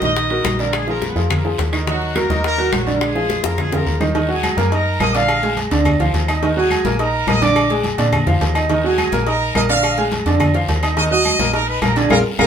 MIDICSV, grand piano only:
0, 0, Header, 1, 2, 480
1, 0, Start_track
1, 0, Key_signature, -6, "minor"
1, 0, Tempo, 284225
1, 1243, Time_signature, 4, 2, 24, 8
1, 21056, End_track
2, 0, Start_track
2, 0, Title_t, "Grand piano"
2, 0, Program_c, 0, 0
2, 37, Note_on_c, 0, 51, 84
2, 41, Note_on_c, 0, 63, 84
2, 45, Note_on_c, 0, 75, 89
2, 433, Note_off_c, 0, 51, 0
2, 435, Note_off_c, 0, 63, 0
2, 438, Note_off_c, 0, 75, 0
2, 517, Note_on_c, 0, 54, 75
2, 521, Note_on_c, 0, 66, 76
2, 527, Note_on_c, 0, 70, 73
2, 913, Note_off_c, 0, 54, 0
2, 916, Note_off_c, 0, 66, 0
2, 919, Note_off_c, 0, 70, 0
2, 999, Note_on_c, 0, 50, 84
2, 1005, Note_on_c, 0, 62, 77
2, 1009, Note_on_c, 0, 74, 82
2, 1395, Note_off_c, 0, 50, 0
2, 1398, Note_off_c, 0, 62, 0
2, 1401, Note_off_c, 0, 74, 0
2, 1476, Note_on_c, 0, 53, 75
2, 1484, Note_on_c, 0, 65, 74
2, 1489, Note_on_c, 0, 68, 74
2, 1873, Note_off_c, 0, 53, 0
2, 1877, Note_off_c, 0, 65, 0
2, 1880, Note_off_c, 0, 68, 0
2, 1952, Note_on_c, 0, 53, 78
2, 1960, Note_on_c, 0, 65, 74
2, 1963, Note_on_c, 0, 68, 79
2, 2351, Note_off_c, 0, 53, 0
2, 2356, Note_off_c, 0, 65, 0
2, 2357, Note_off_c, 0, 68, 0
2, 2441, Note_on_c, 0, 53, 77
2, 2444, Note_on_c, 0, 65, 75
2, 2448, Note_on_c, 0, 68, 75
2, 2836, Note_off_c, 0, 53, 0
2, 2838, Note_off_c, 0, 65, 0
2, 2841, Note_off_c, 0, 68, 0
2, 2912, Note_on_c, 0, 51, 84
2, 2919, Note_on_c, 0, 63, 85
2, 2922, Note_on_c, 0, 75, 88
2, 3114, Note_off_c, 0, 51, 0
2, 3118, Note_off_c, 0, 63, 0
2, 3120, Note_off_c, 0, 75, 0
2, 3155, Note_on_c, 0, 51, 81
2, 3160, Note_on_c, 0, 63, 81
2, 3164, Note_on_c, 0, 75, 78
2, 3553, Note_off_c, 0, 51, 0
2, 3556, Note_off_c, 0, 63, 0
2, 3558, Note_off_c, 0, 75, 0
2, 3637, Note_on_c, 0, 54, 74
2, 3640, Note_on_c, 0, 66, 73
2, 3647, Note_on_c, 0, 70, 75
2, 3838, Note_off_c, 0, 54, 0
2, 3839, Note_off_c, 0, 66, 0
2, 3843, Note_off_c, 0, 70, 0
2, 3877, Note_on_c, 0, 51, 89
2, 3883, Note_on_c, 0, 63, 88
2, 3885, Note_on_c, 0, 75, 88
2, 4275, Note_off_c, 0, 51, 0
2, 4278, Note_off_c, 0, 63, 0
2, 4279, Note_off_c, 0, 75, 0
2, 4360, Note_on_c, 0, 54, 79
2, 4362, Note_on_c, 0, 66, 78
2, 4367, Note_on_c, 0, 70, 79
2, 4756, Note_off_c, 0, 54, 0
2, 4758, Note_off_c, 0, 66, 0
2, 4761, Note_off_c, 0, 70, 0
2, 4844, Note_on_c, 0, 50, 89
2, 4847, Note_on_c, 0, 62, 83
2, 4849, Note_on_c, 0, 74, 81
2, 5239, Note_off_c, 0, 50, 0
2, 5241, Note_off_c, 0, 62, 0
2, 5242, Note_off_c, 0, 74, 0
2, 5324, Note_on_c, 0, 53, 79
2, 5328, Note_on_c, 0, 65, 73
2, 5336, Note_on_c, 0, 68, 75
2, 5719, Note_off_c, 0, 53, 0
2, 5722, Note_off_c, 0, 65, 0
2, 5726, Note_off_c, 0, 68, 0
2, 5799, Note_on_c, 0, 53, 77
2, 5808, Note_on_c, 0, 65, 75
2, 5812, Note_on_c, 0, 68, 76
2, 6196, Note_off_c, 0, 53, 0
2, 6201, Note_off_c, 0, 65, 0
2, 6204, Note_off_c, 0, 68, 0
2, 6288, Note_on_c, 0, 53, 72
2, 6293, Note_on_c, 0, 65, 76
2, 6299, Note_on_c, 0, 68, 76
2, 6681, Note_off_c, 0, 53, 0
2, 6684, Note_off_c, 0, 65, 0
2, 6688, Note_off_c, 0, 68, 0
2, 6759, Note_on_c, 0, 51, 80
2, 6762, Note_on_c, 0, 63, 79
2, 6769, Note_on_c, 0, 75, 78
2, 6959, Note_off_c, 0, 51, 0
2, 6961, Note_off_c, 0, 63, 0
2, 6965, Note_off_c, 0, 75, 0
2, 7004, Note_on_c, 0, 51, 86
2, 7008, Note_on_c, 0, 63, 86
2, 7013, Note_on_c, 0, 75, 82
2, 7203, Note_off_c, 0, 51, 0
2, 7205, Note_off_c, 0, 63, 0
2, 7207, Note_off_c, 0, 75, 0
2, 7234, Note_on_c, 0, 54, 77
2, 7239, Note_on_c, 0, 66, 77
2, 7247, Note_on_c, 0, 78, 80
2, 7633, Note_off_c, 0, 54, 0
2, 7636, Note_off_c, 0, 66, 0
2, 7641, Note_off_c, 0, 78, 0
2, 7721, Note_on_c, 0, 58, 82
2, 7726, Note_on_c, 0, 70, 82
2, 7729, Note_on_c, 0, 82, 80
2, 7920, Note_off_c, 0, 58, 0
2, 7924, Note_off_c, 0, 70, 0
2, 7925, Note_off_c, 0, 82, 0
2, 7963, Note_on_c, 0, 63, 77
2, 7968, Note_on_c, 0, 75, 76
2, 7973, Note_on_c, 0, 87, 72
2, 8358, Note_off_c, 0, 63, 0
2, 8361, Note_off_c, 0, 75, 0
2, 8364, Note_off_c, 0, 87, 0
2, 8448, Note_on_c, 0, 58, 74
2, 8454, Note_on_c, 0, 70, 73
2, 8459, Note_on_c, 0, 82, 71
2, 8644, Note_off_c, 0, 58, 0
2, 8648, Note_off_c, 0, 70, 0
2, 8651, Note_off_c, 0, 82, 0
2, 8692, Note_on_c, 0, 50, 91
2, 8698, Note_on_c, 0, 62, 86
2, 8702, Note_on_c, 0, 74, 95
2, 9084, Note_off_c, 0, 50, 0
2, 9087, Note_off_c, 0, 62, 0
2, 9090, Note_off_c, 0, 74, 0
2, 9169, Note_on_c, 0, 56, 80
2, 9171, Note_on_c, 0, 68, 78
2, 9179, Note_on_c, 0, 80, 78
2, 9561, Note_off_c, 0, 56, 0
2, 9563, Note_off_c, 0, 68, 0
2, 9568, Note_off_c, 0, 80, 0
2, 9647, Note_on_c, 0, 50, 89
2, 9650, Note_on_c, 0, 62, 97
2, 9658, Note_on_c, 0, 74, 90
2, 10040, Note_off_c, 0, 50, 0
2, 10042, Note_off_c, 0, 62, 0
2, 10047, Note_off_c, 0, 74, 0
2, 10135, Note_on_c, 0, 53, 84
2, 10137, Note_on_c, 0, 65, 81
2, 10143, Note_on_c, 0, 77, 84
2, 10525, Note_off_c, 0, 53, 0
2, 10526, Note_off_c, 0, 65, 0
2, 10530, Note_off_c, 0, 77, 0
2, 10611, Note_on_c, 0, 63, 79
2, 10617, Note_on_c, 0, 75, 82
2, 10621, Note_on_c, 0, 87, 79
2, 10806, Note_off_c, 0, 63, 0
2, 10810, Note_off_c, 0, 75, 0
2, 10812, Note_off_c, 0, 87, 0
2, 10849, Note_on_c, 0, 51, 90
2, 10852, Note_on_c, 0, 63, 90
2, 10862, Note_on_c, 0, 75, 91
2, 11044, Note_off_c, 0, 51, 0
2, 11046, Note_off_c, 0, 63, 0
2, 11052, Note_off_c, 0, 75, 0
2, 11090, Note_on_c, 0, 54, 79
2, 11093, Note_on_c, 0, 66, 88
2, 11101, Note_on_c, 0, 78, 85
2, 11482, Note_off_c, 0, 54, 0
2, 11484, Note_off_c, 0, 66, 0
2, 11488, Note_off_c, 0, 78, 0
2, 11568, Note_on_c, 0, 58, 80
2, 11573, Note_on_c, 0, 70, 80
2, 11579, Note_on_c, 0, 82, 84
2, 11764, Note_off_c, 0, 58, 0
2, 11767, Note_off_c, 0, 70, 0
2, 11770, Note_off_c, 0, 82, 0
2, 11811, Note_on_c, 0, 63, 74
2, 11816, Note_on_c, 0, 75, 75
2, 11822, Note_on_c, 0, 87, 74
2, 12202, Note_off_c, 0, 63, 0
2, 12205, Note_off_c, 0, 75, 0
2, 12209, Note_off_c, 0, 87, 0
2, 12287, Note_on_c, 0, 58, 72
2, 12291, Note_on_c, 0, 70, 76
2, 12299, Note_on_c, 0, 82, 74
2, 12483, Note_off_c, 0, 58, 0
2, 12485, Note_off_c, 0, 70, 0
2, 12490, Note_off_c, 0, 82, 0
2, 12526, Note_on_c, 0, 50, 87
2, 12528, Note_on_c, 0, 62, 92
2, 12534, Note_on_c, 0, 74, 95
2, 12919, Note_off_c, 0, 50, 0
2, 12921, Note_off_c, 0, 62, 0
2, 12924, Note_off_c, 0, 74, 0
2, 13004, Note_on_c, 0, 56, 80
2, 13009, Note_on_c, 0, 68, 77
2, 13013, Note_on_c, 0, 80, 78
2, 13398, Note_off_c, 0, 56, 0
2, 13401, Note_off_c, 0, 68, 0
2, 13403, Note_off_c, 0, 80, 0
2, 13477, Note_on_c, 0, 50, 91
2, 13483, Note_on_c, 0, 62, 99
2, 13490, Note_on_c, 0, 74, 95
2, 13874, Note_off_c, 0, 50, 0
2, 13877, Note_off_c, 0, 62, 0
2, 13882, Note_off_c, 0, 74, 0
2, 13967, Note_on_c, 0, 53, 85
2, 13971, Note_on_c, 0, 65, 83
2, 13973, Note_on_c, 0, 77, 80
2, 14360, Note_off_c, 0, 53, 0
2, 14362, Note_off_c, 0, 65, 0
2, 14363, Note_off_c, 0, 77, 0
2, 14440, Note_on_c, 0, 63, 80
2, 14448, Note_on_c, 0, 75, 77
2, 14452, Note_on_c, 0, 87, 75
2, 14639, Note_off_c, 0, 63, 0
2, 14643, Note_off_c, 0, 75, 0
2, 14646, Note_off_c, 0, 87, 0
2, 14689, Note_on_c, 0, 51, 91
2, 14691, Note_on_c, 0, 63, 85
2, 14698, Note_on_c, 0, 75, 83
2, 14884, Note_off_c, 0, 51, 0
2, 14885, Note_off_c, 0, 63, 0
2, 14889, Note_off_c, 0, 75, 0
2, 14934, Note_on_c, 0, 54, 81
2, 14936, Note_on_c, 0, 66, 78
2, 14943, Note_on_c, 0, 78, 76
2, 15323, Note_off_c, 0, 54, 0
2, 15325, Note_off_c, 0, 66, 0
2, 15329, Note_off_c, 0, 78, 0
2, 15412, Note_on_c, 0, 58, 79
2, 15416, Note_on_c, 0, 70, 83
2, 15422, Note_on_c, 0, 82, 84
2, 15606, Note_off_c, 0, 58, 0
2, 15608, Note_off_c, 0, 70, 0
2, 15612, Note_off_c, 0, 82, 0
2, 15648, Note_on_c, 0, 63, 71
2, 15658, Note_on_c, 0, 75, 74
2, 15659, Note_on_c, 0, 87, 78
2, 16040, Note_off_c, 0, 63, 0
2, 16046, Note_off_c, 0, 75, 0
2, 16046, Note_off_c, 0, 87, 0
2, 16128, Note_on_c, 0, 58, 70
2, 16137, Note_on_c, 0, 70, 74
2, 16138, Note_on_c, 0, 82, 72
2, 16323, Note_off_c, 0, 58, 0
2, 16328, Note_off_c, 0, 70, 0
2, 16329, Note_off_c, 0, 82, 0
2, 16368, Note_on_c, 0, 50, 90
2, 16373, Note_on_c, 0, 62, 89
2, 16378, Note_on_c, 0, 74, 89
2, 16760, Note_off_c, 0, 50, 0
2, 16763, Note_off_c, 0, 62, 0
2, 16766, Note_off_c, 0, 74, 0
2, 16848, Note_on_c, 0, 56, 83
2, 16855, Note_on_c, 0, 68, 84
2, 16858, Note_on_c, 0, 80, 87
2, 17240, Note_off_c, 0, 56, 0
2, 17244, Note_off_c, 0, 68, 0
2, 17246, Note_off_c, 0, 80, 0
2, 17331, Note_on_c, 0, 50, 89
2, 17335, Note_on_c, 0, 62, 94
2, 17341, Note_on_c, 0, 74, 91
2, 17722, Note_off_c, 0, 50, 0
2, 17724, Note_off_c, 0, 62, 0
2, 17728, Note_off_c, 0, 74, 0
2, 17810, Note_on_c, 0, 53, 80
2, 17816, Note_on_c, 0, 65, 80
2, 17820, Note_on_c, 0, 77, 82
2, 18201, Note_off_c, 0, 53, 0
2, 18204, Note_off_c, 0, 65, 0
2, 18207, Note_off_c, 0, 77, 0
2, 18288, Note_on_c, 0, 63, 82
2, 18294, Note_on_c, 0, 75, 82
2, 18300, Note_on_c, 0, 87, 80
2, 18483, Note_off_c, 0, 63, 0
2, 18487, Note_off_c, 0, 75, 0
2, 18490, Note_off_c, 0, 87, 0
2, 18524, Note_on_c, 0, 51, 89
2, 18524, Note_on_c, 0, 63, 92
2, 18532, Note_on_c, 0, 75, 93
2, 18721, Note_off_c, 0, 51, 0
2, 18721, Note_off_c, 0, 63, 0
2, 18726, Note_off_c, 0, 75, 0
2, 18765, Note_on_c, 0, 54, 82
2, 18768, Note_on_c, 0, 66, 77
2, 18773, Note_on_c, 0, 78, 84
2, 19159, Note_off_c, 0, 54, 0
2, 19160, Note_off_c, 0, 66, 0
2, 19163, Note_off_c, 0, 78, 0
2, 19242, Note_on_c, 0, 58, 87
2, 19250, Note_on_c, 0, 70, 83
2, 19253, Note_on_c, 0, 82, 81
2, 19440, Note_off_c, 0, 58, 0
2, 19444, Note_off_c, 0, 70, 0
2, 19446, Note_off_c, 0, 82, 0
2, 19476, Note_on_c, 0, 63, 69
2, 19483, Note_on_c, 0, 75, 75
2, 19487, Note_on_c, 0, 87, 74
2, 19873, Note_off_c, 0, 63, 0
2, 19877, Note_off_c, 0, 75, 0
2, 19880, Note_off_c, 0, 87, 0
2, 19964, Note_on_c, 0, 58, 71
2, 19968, Note_on_c, 0, 70, 71
2, 19976, Note_on_c, 0, 82, 69
2, 20161, Note_off_c, 0, 58, 0
2, 20163, Note_off_c, 0, 70, 0
2, 20168, Note_off_c, 0, 82, 0
2, 20204, Note_on_c, 0, 50, 92
2, 20206, Note_on_c, 0, 62, 96
2, 20212, Note_on_c, 0, 74, 93
2, 20401, Note_off_c, 0, 50, 0
2, 20402, Note_off_c, 0, 62, 0
2, 20406, Note_off_c, 0, 74, 0
2, 20445, Note_on_c, 0, 68, 100
2, 20445, Note_on_c, 0, 70, 105
2, 20446, Note_on_c, 0, 65, 101
2, 20598, Note_off_c, 0, 70, 0
2, 20599, Note_off_c, 0, 65, 0
2, 20599, Note_off_c, 0, 68, 0
2, 20925, Note_on_c, 0, 65, 96
2, 20925, Note_on_c, 0, 68, 106
2, 20927, Note_on_c, 0, 70, 100
2, 21056, Note_off_c, 0, 65, 0
2, 21056, Note_off_c, 0, 68, 0
2, 21056, Note_off_c, 0, 70, 0
2, 21056, End_track
0, 0, End_of_file